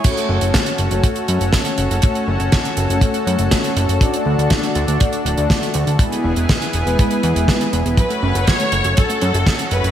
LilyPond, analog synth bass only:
\new Staff \with { instrumentName = "Analog synth bass" } { \clef bass \time 4/4 \key fis \minor \tempo 4 = 121 r8 fis,,16 fis,,16 r8 fis,,16 fis,,16 r8 fis,16 fis,,16 r8 fis,,16 fis,,16 | r8 fis,,16 fis,,16 r8 fis,,16 fis,,16 r8 fis,16 fis,,16 r8 fis,,16 fis,,16 | r8 d,16 d,16 r8 d,16 d,16 r8 d,,16 d,16 r8 d,16 d,16 | r8 e,,16 e,,16 r8 e,,16 e,,16 r8 e,16 e,,16 r8 e,,16 e,,16 |
r8 fis,,16 fis,,16 r8 fis,,16 fis,,16 r8 fis,16 fis,,16 r8 fis,,16 fis,,16 | }